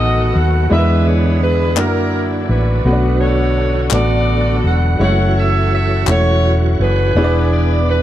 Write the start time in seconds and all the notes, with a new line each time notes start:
Already playing: A1 B2 D#3 F#3 A3 B3 D#4 F#4 A4 B4 D#5 G#5
0.35 D#2 F#5
0.70 E2 D3 E3 G#3 B3 D4 E4 G#4 A#4 B4 E5
0.78 B4
1.07 C#5
1.43 B4
1.76 F#2 F#3 A#3 D4 E4 F#4 A#4, clap
2.49 A1 D4 F#4 B4
2.85 B1 B2 D3 A3 B3 C#4 F#4 B4
2.93 D4
3.21 F#4 A4 C#5
3.90 A1 A3 B3 D4 F#4 A4 D5, clap
4.64 E1 F#5
4.99 F#1 E3 G#3 C#4 E4 F#4 C#5
5.03 A3 A4 C#5 F#5
5.39 E5
5.73 E5
6.07 E1 A3 C#4 E4 F#4 C#5, clap
6.80 F#1 D4 G#4 B4
7.15 E1 E3 B3 D4 E4 G#4 B4 C#5
7.24 D5
7.52 D5
7.90 B4